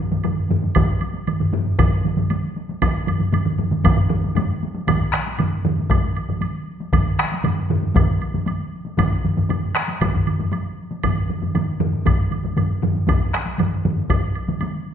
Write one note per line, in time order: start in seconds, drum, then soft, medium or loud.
0.12 taiko low-mid medium
0.12 taiko mid medium
0.12 taiko high medium
0.24 taiko low-mid medium
0.24 taiko mid loud
0.24 taiko high medium
0.24 high woodblock soft
0.50 taiko low-mid loud
0.50 taiko mid loud
0.50 taiko high medium
0.62 taiko high medium
0.75 taiko loud
0.75 taiko low-mid loud
0.75 taiko mid loud
0.75 taiko high medium
0.75 high woodblock medium
1.01 taiko high medium
1.01 high woodblock soft
1.13 taiko high medium
1.27 taiko low-mid medium
1.27 taiko mid medium
1.27 taiko high medium
1.27 high woodblock soft
1.40 taiko low-mid medium
1.40 taiko mid medium
1.53 taiko low-mid loud
1.53 taiko mid medium
1.53 taiko high medium
1.65 taiko high medium
1.79 taiko loud
1.79 taiko low-mid loud
1.79 taiko mid loud
1.79 taiko high medium
1.79 high woodblock medium
2.04 taiko low-mid medium
2.04 taiko mid medium
2.04 taiko high medium
2.17 taiko low-mid medium
2.17 taiko mid medium
2.17 taiko high medium
2.30 taiko high medium
2.30 high woodblock soft
2.56 taiko high medium
2.69 taiko high medium
2.82 taiko loud
2.82 taiko low-mid medium
2.82 taiko mid medium
2.82 taiko high medium
2.82 high woodblock medium
3.07 taiko low-mid medium
3.07 taiko mid medium
3.07 taiko high medium
3.07 high woodblock soft
3.20 taiko low-mid medium
3.20 taiko mid medium
3.20 taiko high medium
3.33 taiko low-mid medium
3.33 taiko mid medium
3.33 taiko high medium
3.33 high woodblock medium
3.45 taiko low-mid medium
3.45 taiko mid medium
3.58 taiko low-mid medium
3.58 taiko mid medium
3.58 taiko high medium
3.71 taiko low-mid medium
3.71 taiko mid medium
3.71 taiko high medium
3.84 taiko loud
3.84 taiko low-mid loud
3.84 taiko mid medium
3.84 taiko high medium
3.84 high woodblock medium
3.97 taiko low-mid medium
3.97 taiko mid medium
4.09 taiko low-mid loud
4.09 taiko mid medium
4.09 taiko high medium
4.24 taiko high medium
4.35 taiko low-mid loud
4.35 taiko mid medium
4.35 taiko high medium
4.35 high woodblock soft
4.63 taiko high medium
4.75 taiko high medium
4.87 taiko loud
4.87 taiko low-mid medium
4.87 taiko mid loud
4.87 taiko high medium
4.87 high woodblock medium
5.13 taiko rim medium
5.27 taiko high soft
5.38 taiko low-mid medium
5.38 taiko mid medium
5.38 taiko high medium
5.38 high woodblock soft
5.65 taiko low-mid loud
5.65 taiko mid medium
5.79 taiko high medium
5.90 taiko loud
5.90 taiko low-mid medium
5.90 taiko mid medium
5.90 taiko high medium
5.90 high woodblock medium
6.16 high woodblock soft
6.29 taiko low-mid medium
6.29 taiko mid medium
6.29 taiko high medium
6.41 taiko high medium
6.41 high woodblock soft
6.80 taiko high medium
6.93 taiko loud
6.93 taiko low-mid medium
6.93 taiko mid medium
6.93 taiko high medium
6.93 high woodblock medium
7.19 taiko rim medium
7.32 taiko high medium
7.44 taiko low-mid medium
7.44 taiko mid loud
7.44 taiko high medium
7.44 high woodblock soft
7.70 taiko low-mid loud
7.70 taiko mid medium
7.83 taiko high soft
7.95 taiko loud
7.95 taiko low-mid loud
7.95 taiko mid medium
7.95 taiko high medium
7.95 high woodblock medium
8.22 high woodblock soft
8.34 taiko low-mid medium
8.34 taiko mid medium
8.34 taiko high medium
8.46 taiko high medium
8.46 high woodblock soft
8.85 taiko high medium
8.98 taiko loud
8.98 taiko low-mid medium
8.98 taiko mid loud
8.98 taiko high medium
8.98 high woodblock medium
9.24 taiko low-mid medium
9.24 taiko mid medium
9.37 taiko low-mid medium
9.37 taiko mid medium
9.37 taiko high medium
9.49 taiko low-mid medium
9.49 taiko mid medium
9.49 taiko high medium
9.49 high woodblock soft
9.75 taiko rim medium
9.88 taiko high medium
10.01 taiko loud
10.01 taiko low-mid medium
10.01 taiko mid medium
10.01 taiko high medium
10.01 high woodblock medium
10.14 taiko low-mid medium
10.14 taiko mid medium
10.27 taiko low-mid medium
10.27 taiko mid medium
10.27 high woodblock soft
10.39 taiko low-mid medium
10.39 taiko mid medium
10.39 taiko high medium
10.52 taiko high medium
10.52 high woodblock soft
10.91 taiko high medium
11.03 taiko medium
11.03 taiko low-mid medium
11.03 taiko mid loud
11.03 taiko high medium
11.03 high woodblock medium
11.29 taiko low-mid medium
11.29 taiko mid medium
11.42 taiko low-mid medium
11.42 taiko mid medium
11.42 taiko high medium
11.55 taiko low-mid medium
11.55 taiko mid medium
11.55 taiko high medium
11.55 high woodblock soft
11.80 taiko low-mid loud
11.80 taiko mid medium
11.93 taiko high medium
12.06 taiko loud
12.06 taiko low-mid loud
12.06 taiko mid medium
12.06 taiko high medium
12.06 high woodblock medium
12.31 taiko low-mid medium
12.31 taiko mid medium
12.31 taiko high soft
12.31 high woodblock soft
12.44 taiko low-mid medium
12.44 taiko mid medium
12.44 taiko high medium
12.56 taiko low-mid medium
12.56 taiko mid medium
12.56 taiko high medium
12.56 high woodblock soft
12.82 taiko low-mid loud
12.82 taiko mid medium
12.95 taiko high medium
13.07 taiko loud
13.07 taiko low-mid medium
13.07 taiko mid loud
13.07 taiko high medium
13.07 high woodblock medium
13.34 taiko rim medium
13.46 taiko high soft
13.58 taiko low-mid medium
13.58 taiko mid loud
13.58 taiko high medium
13.58 high woodblock soft
13.85 taiko low-mid loud
13.85 taiko mid medium
13.96 taiko high medium
14.09 taiko loud
14.09 taiko low-mid loud
14.09 taiko mid loud
14.09 taiko high medium
14.09 high woodblock medium
14.35 high woodblock soft
14.48 taiko low-mid medium
14.48 taiko mid medium
14.48 taiko high medium
14.61 taiko high medium
14.61 high woodblock soft